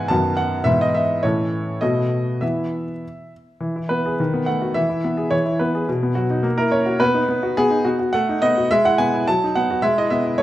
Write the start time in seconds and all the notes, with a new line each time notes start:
Already playing: G#2 E3 B3 E4 F#5 G#5
0.08 F#2 D#3 B3 F#4 A5
0.37 F#5
0.64 G#2 E3 B3 E4 E5
0.81 D#5
0.94 E5
1.23 A2 E3 C#4 A4 C#5
1.81 B2 A3 B3 F#4 D#5
2.41 E3 B3 E4 E5
3.60 E3
3.76 E4
3.89 B3 B4
4.06 G#4
4.20 D#3
4.34 B3
4.46 A3 F#5
4.62 F#4
4.74 E3 E5
4.89 E4
5.04 B3
5.17 G#4
5.31 E3 C#5
5.46 E4
5.59 B3 B4
5.75 G#4
5.88 B2
6.03 B3
6.15 F#3 F#4
6.30 D#4
6.43 A#3
6.58 E4 A#4
6.72 C#4 C#5
6.86 F#4
7.00 B3 B4
7.14 D#4
7.29 B3
7.43 F#4
7.57 B3 G#4
7.70 D#4
7.85 B3 F#4
7.99 F#4
8.13 A3 F#5
8.29 D#4
8.42 B3 D#5
8.57 F#4
8.71 G#3 E5
8.85 E4 F#5
8.98 B3 G#5
9.14 E4
9.28 F#3 A5
9.44 D#4
9.55 B3 F#5
9.70 F#4
9.82 G#3 E5
9.98 E4 D#5
10.10 B3 E5
10.25 E4
10.38 A3 C#5